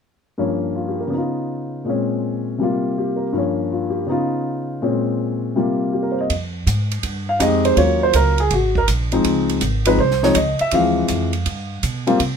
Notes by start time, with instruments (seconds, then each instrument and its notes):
0.38 upright piano G2 F3 A#3 C#4
0.76 upright piano F4
0.88 upright piano G4
1.01 upright piano A#4
1.07 upright piano C#3 B3
1.14 upright piano D#4 F4
1.85 upright piano A#2 G#3 C4
1.89 upright piano C#4
2.58 upright piano C3 G3 A#3
2.63 upright piano F4
2.98 upright piano G4
3.16 upright piano A#4
3.33 upright piano G2 F3 A#3
3.38 upright piano C#4
3.72 upright piano F4
3.90 upright piano G4
4.07 upright piano C#3 B3 D#4
4.11 upright piano F4
4.82 upright piano A#2 G#3 C4 C#4
5.55 upright piano C3 G3 A#3 F4
5.93 upright piano G4
6.03 upright piano A#4
6.12 upright piano C5
6.21 upright piano D#5
6.30 upright bass F2, kick, ride
6.67 upright bass G#2, kick, hi-hat pedal, ride
6.92 ride
7.03 upright bass G2, kick, ride
7.29 upright piano F5
7.39 upright bass F2, upright piano G#3 C4 D#4 G4 D#5, kick, hi-hat pedal, ride
7.65 upright piano C5, ride
7.76 upright bass D#2, upright piano F#3 A#3 C#4 F4 C#5, kick, ride
8.03 upright piano C5
8.13 upright bass C#2, upright piano A#4, kick, hi-hat pedal, ride
8.38 upright piano G#4, ride
8.51 upright bass G#1, upright piano F#4, kick, ride
8.75 upright piano A#4, kick
8.88 upright bass A#1, kick, hi-hat pedal, ride
9.12 upright piano F3 G#3 C4 D#4, ride
9.24 upright bass C#2, kick, ride
9.49 ride
9.61 upright bass G#1, kick, hi-hat pedal, ride
9.85 upright piano F3 G#3 C4 D#4 B4, ride
9.99 upright bass C2, upright piano C5, kick
10.11 snare
10.23 upright piano F3 G#3 C4 D#4 C#5, snare
10.35 upright bass C#2, upright piano D#5, kick, hi-hat pedal, ride
10.59 upright piano E5, muted upright bass stroke, ride
10.71 upright bass D2, upright piano E3 F3 G#3 C4 F5, kick, ride
11.08 upright bass F2, kick, hi-hat pedal, ride
11.33 ride
11.46 upright bass G2, kick, ride
11.83 upright bass B2, kick, hi-hat pedal, ride
12.07 upright piano G3 A#3 C4 F4, ride
12.20 upright bass C3, kick, ride